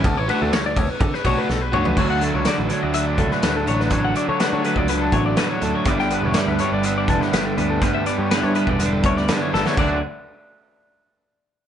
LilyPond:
<<
  \new Staff \with { instrumentName = "Clean electric guitar" } { \time 4/4 \key d \major \tempo 4 = 123 a'16 cis''16 b'16 a'16 cis''16 d''16 cis''16 b'16 a'16 b'16 cis''16 b'16 a'16 b'16 cis''16 b'16 | cis''16 fis''16 a'16 cis''16 d''16 b'16 cis''16 d''16 e''16 d''16 a'16 b'16 b'16 a'16 cis''16 b'16 | cis''16 fis''16 d''16 cis''16 b'16 cis''16 b'16 d''16 b'16 a'16 cis''16 d''16 b'16 cis''16 a'16 cis''16 | d''16 g''16 b'16 cis''16 d''16 b'16 cis''16 d''16 e''16 d''16 a'16 b'16 b'16 a'16 b'16 a'16 |
b'16 e''16 d''16 cis''16 b'16 cis''16 b'16 d''16 b'16 a'16 cis''16 d''16 b'16 cis''16 a'16 cis''16 | d''8 r2. r8 | }
  \new Staff \with { instrumentName = "Overdriven electric guitar" } { \time 4/4 \key d \major r8 <d a d' fis'>8 r4. <d a d' fis'>8 r8 <d a d' fis'>8 | <d fis a d'>8 <fis a d'>8 <d fis a d'>8 <fis a d'>8 <d fis a d'>4 <d fis a d'>8 <fis a d'>8 | <d fis a d'>8 <fis a d'>8 <d fis a d'>8 <fis a d'>8 <d fis a d'>4 <d fis a d'>8 <fis a d'>8 | <g, d g b d'>8 <g b d'>8 <d g b d'>8 <g b d'>8 <g, d g b d'>4 <d g b d'>8 <g b d'>8 |
<g, d g b d'>8 <g b d'>8 <d g b d'>8 <g b d'>8 <g, d g b d'>4 <d g b d'>8 <g b d'>8 | <d fis a d'>8 r2. r8 | }
  \new Staff \with { instrumentName = "Clean electric guitar" } { \clef bass \time 4/4 \key d \major << { r1 | <d fis fis'>8 fis8 fis'8 fis4 fis'4. | r8 fis8 fis'8 fis4 fis'4. | <d b d' e'>8 b8 e'8 b8 d'8 e'8 d'4 |
r8 b8 e'8 b8 d'8 e'4. | <d fis cis' fis'>8 r2. r8 | } \\ { r1 | d,4. d4 a,4. | r2 r8 a,8 e,8 fis,8 | g,4. d4 d4. |
g,4. d4 d8 fis,8 e,8 | d,8 r2. r8 | } >> }
  \new Staff \with { instrumentName = "Picked electric bass" } { \clef bass \time 4/4 \key d \major d,16 a,,16 r16 d,16 d,8 d,16 r16 d16 r16 b,,16 r16 b,,8 cis,8 | d,8. cis,16 r16 a,,16 r16 d,8. cis,16 r16 d,8 a,,8 | a,,8 r16 d16 r16 d8 cis,8. a,,8 d16 r16 d,16 r16 | g,,8. e,,16 r16 d,16 r16 g,,8. e,,16 r16 g,,8 d,8 |
d,8 r16 g,16 r16 g,8 e,,8. d,8 g,16 r16 g,,16 r16 | d,8 r2. r8 | }
  \new DrumStaff \with { instrumentName = "Drums" } \drummode { \time 4/4 <bd cymr>8 cymr8 <cymr sn>8 <bd cymr>8 <bd cymr>16 sn16 <bd cymr>8 sn8 toml16 tomfh16 | <cymc bd>8 hh8 <hh sn>8 hh8 hh8 <hh bd>16 sn16 <hh sn>8 hh16 sn16 | <hh bd>8 hh8 <hh sn>8 hh16 bd16 hh8 <hh bd>8 <hh sn>8 hh8 | <hh bd>16 sn16 hh8 <hh sn>8 hh8 hh8 <hh bd>16 sn16 <hh sn>8 hh8 |
<hh bd>8 hh8 <hh sn>8 hh16 bd16 hh8 <hh bd>16 sn16 <hh sn>8 sn16 sn16 | <cymc bd>4 r4 r4 r4 | }
>>